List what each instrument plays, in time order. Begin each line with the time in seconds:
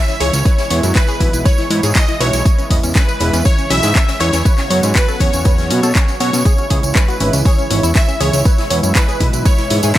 Already playing: analog synth pad C#3 E3 G#3 E4, supersaw synth E5, digital synth lead E5
0.08 synth arpeggio sound C#4, snare, closed hi-hat, tambourine
0.20 analog synth bass C#2, synth stab E3 G#3 C#4 E4, synth arpeggio sound G#4, supersaw synth C#5, digital synth lead C#5, closed hi-hat, open hi-hat
0.33 analog synth bass C#2, synth arpeggio sound C#4, snare, closed hi-hat, tambourine
0.45 analog synth pad B2 G#3, synth arpeggio sound B4, kick, closed hi-hat, tambourine
0.58 synth arpeggio sound E4, snare, closed hi-hat, tambourine
0.70 analog synth bass E2, synth stab E3 G#3 B3 E4, synth arpeggio sound C#5, closed hi-hat, open hi-hat
0.83 analog synth bass F#2, synth arpeggio sound E4, closed hi-hat, tambourine
0.95 synth arpeggio sound E4, digital synth lead B4, supersaw synth B4, kick, snare, clap, closed hi-hat, tambourine
1.07 synth arpeggio sound G#4, closed hi-hat, tambourine
1.20 analog synth bass B1, synth stab E3 G#3 B3 E4, synth arpeggio sound E4, kick, closed hi-hat, open hi-hat
1.33 analog synth bass B1, synth arpeggio sound E4, closed hi-hat, tambourine
1.45 synth arpeggio sound B4, supersaw synth C#5, digital synth lead C#5, kick, closed hi-hat, tambourine
1.58 synth arpeggio sound E4, snare, closed hi-hat, tambourine
1.70 analog synth bass G#2, synth stab E3 G#3 B3 E4, synth arpeggio sound E4, closed hi-hat, open hi-hat
1.83 analog synth bass G#2, synth arpeggio sound G#4, closed hi-hat, tambourine
1.95 synth arpeggio sound E4, digital synth lead D#5, supersaw synth D#5, kick, snare, clap, closed hi-hat, tambourine
2.08 synth arpeggio sound E4, snare, closed hi-hat, tambourine
2.20 analog synth bass B1, synth stab E3 G#3 B3 E4, synth arpeggio sound B4, supersaw synth C#5, digital synth lead C#5, closed hi-hat, open hi-hat
2.33 analog synth bass B1, synth arpeggio sound E4, snare, closed hi-hat, tambourine
2.45 analog synth pad C#3 E4, synth arpeggio sound C#5, kick, closed hi-hat, tambourine
2.58 synth arpeggio sound C#4, closed hi-hat, tambourine
2.70 analog synth bass E2, synth stab E3 G#3 C#4 E4, synth arpeggio sound D#5, kick, closed hi-hat, open hi-hat
2.83 analog synth bass E2, synth arpeggio sound C#4, closed hi-hat, tambourine
2.95 synth arpeggio sound C#4, supersaw synth B4, digital synth lead B4, kick, snare, clap, closed hi-hat, tambourine
3.08 synth arpeggio sound B4, closed hi-hat, tambourine
3.20 analog synth bass E1, synth stab E3 G#3 C#4 E4, synth arpeggio sound C#4, closed hi-hat, open hi-hat
3.33 analog synth bass E2, synth arpeggio sound C#4, snare, closed hi-hat, tambourine
3.45 supersaw synth C#5, synth arpeggio sound C#5, digital synth lead C#5, kick, closed hi-hat, tambourine
3.58 synth arpeggio sound C#4, closed hi-hat, tambourine
3.70 analog synth bass B1, synth stab E3 G#3 C#4 E4, synth arpeggio sound C#4, digital synth lead E5, supersaw synth E5, snare, closed hi-hat, open hi-hat
3.83 analog synth bass G#2, synth arpeggio sound G#4, snare, closed hi-hat, tambourine
3.95 synth arpeggio sound C#4, kick, snare, clap, closed hi-hat, tambourine
4.08 synth arpeggio sound C#4, snare, closed hi-hat, tambourine
4.20 analog synth bass E2, synth stab E3 G#3 C#4 E4, digital synth lead C#5, synth arpeggio sound C#5, supersaw synth C#5, snare, closed hi-hat, open hi-hat
4.33 analog synth bass E2, synth arpeggio sound C#4, snare, closed hi-hat, tambourine
4.45 analog synth pad F#3 B3 F#4, synth arpeggio sound B4, kick, closed hi-hat, tambourine
4.58 synth arpeggio sound C#4, snare, clap, closed hi-hat, tambourine
4.70 analog synth bass F#2, synth stab F#3 B3 C#4 F#4, synth arpeggio sound C#5, closed hi-hat, open hi-hat
4.83 analog synth bass G#2, synth arpeggio sound C#4, closed hi-hat, tambourine
4.95 synth arpeggio sound C#4, supersaw synth B4, digital synth lead B4, kick, snare, clap, closed hi-hat, tambourine
5.08 synth arpeggio sound A4, closed hi-hat, tambourine
5.20 analog synth bass E2, synth stab F#3 B3 C#4 F#4, synth arpeggio sound C#4, digital synth lead C#5, supersaw synth C#5, kick, closed hi-hat, open hi-hat
5.33 analog synth bass E2, synth arpeggio sound C#4, closed hi-hat, tambourine
5.45 synth arpeggio sound B4, kick, closed hi-hat, tambourine
5.58 synth arpeggio sound C#4, snare, closed hi-hat, tambourine
5.70 analog synth bass B2, synth stab F#3 B3 C#4 F#4, synth arpeggio sound C#4, closed hi-hat, open hi-hat
5.83 analog synth bass B2, synth arpeggio sound A4, closed hi-hat, tambourine
5.95 synth arpeggio sound C#4, kick, snare, clap, closed hi-hat, tambourine
6.08 synth arpeggio sound C#4, snare, closed hi-hat, tambourine
6.20 analog synth bass B2, synth stab F#3 B3 C#4 F#4, synth arpeggio sound F#4, supersaw synth C#5, digital synth lead C#5, closed hi-hat, open hi-hat
6.33 analog synth bass B2, synth arpeggio sound C#4, snare, closed hi-hat, tambourine
6.45 analog synth pad E3 G#3 E4, synth arpeggio sound G#4, synth texture E5 E6, kick, closed hi-hat, tambourine
6.58 synth arpeggio sound C#4, closed hi-hat, tambourine
6.70 analog synth bass C#2, synth stab E3 G#3 C#4 E4, synth arpeggio sound G#4, kick, closed hi-hat, open hi-hat
6.83 analog synth bass C#2, synth arpeggio sound C#4, closed hi-hat, tambourine
6.95 synth arpeggio sound C#4, digital synth lead B4, supersaw synth B4, kick, snare, clap, closed hi-hat, tambourine
7.08 synth arpeggio sound F#4, closed hi-hat, tambourine
7.20 analog synth bass G#1, synth stab E3 G#3 C#4 E4, synth arpeggio sound C#4, closed hi-hat, open hi-hat
7.33 analog synth bass C#2, synth arpeggio sound C#4, snare, closed hi-hat, tambourine
7.45 synth arpeggio sound G#4, supersaw synth C#5, digital synth lead C#5, kick, closed hi-hat, tambourine
7.58 synth arpeggio sound C#4, closed hi-hat, tambourine
7.70 analog synth bass G#1, synth stab E3 G#3 C#4 E4, synth arpeggio sound C#4, closed hi-hat, open hi-hat
7.83 analog synth bass E2, synth arpeggio sound E4, closed hi-hat, tambourine
7.95 synth arpeggio sound C#4, supersaw synth E5, digital synth lead E5, kick, snare, clap, closed hi-hat, tambourine
8.08 synth arpeggio sound C#4, snare, closed hi-hat, tambourine
8.20 analog synth bass C#2, synth stab E3 G#3 C#4 E4, synth arpeggio sound G#4, supersaw synth C#5, digital synth lead C#5, closed hi-hat, open hi-hat
8.33 analog synth bass C#2, synth arpeggio sound C#4, snare, closed hi-hat, tambourine
8.45 analog synth pad B2, synth arpeggio sound B4, kick, closed hi-hat, tambourine
8.58 synth arpeggio sound E4, snare, closed hi-hat, tambourine
8.70 analog synth bass E2, synth stab E3 G#3 B3 E4, synth arpeggio sound C#5, closed hi-hat, open hi-hat
8.83 analog synth bass F#2, synth arpeggio sound E4, closed hi-hat, tambourine
8.95 synth arpeggio sound E4, digital synth lead B4, supersaw synth B4, kick, snare, clap, closed hi-hat, tambourine
9.08 synth arpeggio sound G#4, closed hi-hat, tambourine
9.20 analog synth bass B1, synth stab E3 G#3 B3 E4, synth arpeggio sound E4, kick, closed hi-hat, open hi-hat
9.33 analog synth bass B1, synth arpeggio sound E4, closed hi-hat, tambourine
9.45 synth arpeggio sound B4, supersaw synth C#5, digital synth lead C#5, kick, closed hi-hat, tambourine
9.58 synth arpeggio sound E4, snare, closed hi-hat, tambourine
9.70 analog synth bass G#2, synth stab E3 G#3 B3 E4, synth arpeggio sound E4, closed hi-hat, open hi-hat
9.83 analog synth bass G#2, synth arpeggio sound G#4, closed hi-hat, tambourine
9.95 tambourine